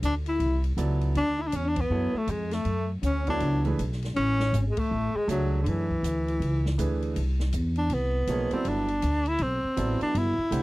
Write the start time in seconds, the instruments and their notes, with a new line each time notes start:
0.02 upright bass D2, trombone D4, tenor saxophone D4, hi-hat pedal, ride
0.26 trombone E4, tenor saxophone E4, ride
0.40 upright bass C2, ride
0.64 ride
0.77 upright bass C#2, grand piano F#3 B3 E4 A4 D5, hi-hat pedal, ride
1.01 ride
1.15 upright bass D2, trombone D4, tenor saxophone D4, ride
1.39 trombone E4, tenor saxophone E4
1.47 trombone D4, tenor saxophone D4
1.52 upright bass E2, trombone C#4, hi-hat pedal, ride
1.56 tenor saxophone C#4
1.65 trombone D4, tenor saxophone D4
1.76 trombone B3, kick, ride
1.81 tenor saxophone B3
1.90 upright bass F#2, grand piano F#3 B3 E4 A4 C#5
2.14 trombone A3, tenor saxophone A3, muted upright bass stroke
2.27 upright bass F2, trombone G#3, tenor saxophone G#3, hi-hat pedal, ride
2.51 trombone A3, tenor saxophone A3, snare, ride
2.65 upright bass F#2, ride
3.03 upright bass D2, trombone C#4, tenor saxophone C#4, hi-hat pedal, ride
3.27 grand piano F#3 B3 E4 A4 C#5, trombone D4, tenor saxophone D4, kick, ride
3.40 upright bass C#2, ride
3.65 grand piano E3 A3 D4 G#4 B4, ride
3.79 upright bass B1, hi-hat pedal, ride
3.92 snare
4.02 snare, ride
4.15 upright bass A1, trombone C#4, tenor saxophone C#4, ride
4.40 snare
4.53 upright bass G#1, hi-hat pedal, ride
4.67 trombone G#3
4.71 tenor saxophone G#3, trombone A3
4.77 tenor saxophone A3, muted upright bass stroke, kick, ride
4.91 upright bass A1
5.14 trombone G#3, tenor saxophone G#3, muted upright bass stroke
5.28 upright bass C#2, trombone F#3, tenor saxophone F#3, grand piano A3 D4 G#4 C#5 E5, hi-hat pedal, ride
5.60 trombone D3, tenor saxophone D3
5.66 upright bass F#2, trombone E3, tenor saxophone E3, ride
5.90 kick
6.03 upright bass D2, hi-hat pedal, ride
6.28 ride
6.40 upright bass C#2, ride
6.66 snare
6.78 upright bass D2, grand piano E3 A3 D4 G#4 B4, hi-hat pedal, ride
7.02 ride
7.16 upright bass C2, ride
7.40 snare
7.53 upright bass E2, hi-hat pedal, ride
7.76 tenor saxophone D4, ride
7.90 upright bass C2, ride
7.94 tenor saxophone B3
8.27 upright bass B1, grand piano F3 A#3 D#4 G#4 C#5, hi-hat pedal, ride
8.51 grand piano F#3 B3 E4 A4 D5, tenor saxophone C4, muted upright bass stroke, ride
8.65 upright bass G1, tenor saxophone D4, ride
8.88 ride
9.02 upright bass D2, hi-hat pedal, ride
9.26 tenor saxophone E4, ride
9.39 upright bass B1, ride
9.43 tenor saxophone C4
9.64 muted upright bass stroke
9.77 upright bass A1, grand piano F#3 B3 E4 A4 D5, hi-hat pedal, ride
10.01 tenor saxophone D4, muted upright bass stroke, ride
10.15 upright bass G1, tenor saxophone E4, ride
10.38 muted upright bass stroke
10.51 upright bass C2, grand piano A3 D4 G4 C5 F#5, hi-hat pedal, ride